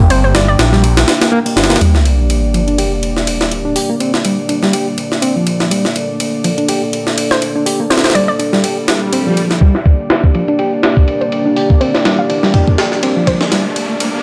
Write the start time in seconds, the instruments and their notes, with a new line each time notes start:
Already playing: detuned saw bass G1, analog synth pad A#3 D4 G4 G5
0.10 reed electric piano C4, synth pluck C5, ride
0.24 synth pluck C5
0.34 reed electric piano G3, synth pluck D5, snare, ride
0.48 synth pluck D5
0.59 detuned saw bass A#1, reed electric piano D4, snare, ride
0.72 reed electric piano G3, snare
0.83 reed electric piano G4, ride
0.97 snare, ride
1.07 reed electric piano D4, snare, ride
1.21 reed electric piano A#3, snare, ride
1.32 reed electric piano A#3
1.45 reed electric piano A#3, ride
1.56 detuned saw bass G1, reed electric piano D4, snare, ride
1.64 snare, ride
1.70 reed electric piano A#3, snare, ride
1.76 snare, ride
1.81 reed electric piano G3, analog synth pad A#3 D4 G4 D5, ride, sub drop
1.95 snare
2.05 ride
2.30 ride
2.54 reed electric piano F3, ride
2.68 reed electric piano D4, ride
2.78 reed electric piano G4, ride
3.03 ride
3.17 snare
3.27 ride
3.41 snare
3.52 ride
3.65 reed electric piano D4
3.76 reed electric piano G4, open hi-hat
3.90 reed electric piano A#3
4.00 reed electric piano C4, ride
4.14 snare
4.25 reed electric piano G3, ride
4.49 reed electric piano D4, ride
4.63 reed electric piano G3, snare
4.73 reed electric piano G4, ride
4.98 ride
5.12 snare
5.22 reed electric piano C4, ride
5.36 reed electric piano F3
5.47 ride
5.60 snare
5.71 reed electric piano G3, analog synth pad A4, ride
5.85 snare
5.96 ride
6.20 ride
6.44 reed electric piano F3, ride
6.58 reed electric piano D4, ride
6.68 reed electric piano G4, ride
6.93 ride
7.07 snare
7.18 ride
7.31 synth pluck C5, snare
7.42 ride
7.55 reed electric piano D4
7.66 reed electric piano G4, open hi-hat
7.80 reed electric piano A#3
7.90 reed electric piano C4, synth pluck C5, snare, ride
7.98 snare, ride
8.04 synth pluck C5, snare, ride
8.10 snare, ride
8.15 reed electric piano G3, synth pluck D5, ride
8.28 synth pluck D5
8.39 reed electric piano D4, ride
8.53 reed electric piano G3, snare
8.64 reed electric piano G4, ride, swell
8.88 snare, ride
9.13 reed electric piano C4, ride
9.27 reed electric piano F3
9.37 ride
9.51 snare
9.61 reed electric piano G3, analog synth pad A#3 D4 G4 D5, kick, ride, riser
9.75 snare
9.86 kick, ride
10.10 snare, ride
10.24 kick
10.35 reed electric piano F3, ride
10.48 reed electric piano D4, ride
10.59 reed electric piano G4, ride
10.83 snare, ride
10.97 kick
11.08 ride
11.21 synth pluck C5, ride
11.32 ride
11.46 reed electric piano D4
11.56 reed electric piano G4, open hi-hat
11.70 reed electric piano A#3, kick
11.81 reed electric piano C4, synth pluck C5, ride
11.94 synth pluck C5, snare
12.05 reed electric piano G3, snare, ride
12.19 synth pluck F5
12.30 reed electric piano D4, ride
12.43 reed electric piano G3, snare
12.54 reed electric piano G4, kick, ride
12.68 kick
12.78 snare, ride
12.92 snare
13.03 reed electric piano C4, ride
13.16 reed electric piano F3
13.27 synth pluck C5, kick, ride
13.41 snare
13.52 reed electric piano G3, snare, ride
13.76 ride
14.00 ride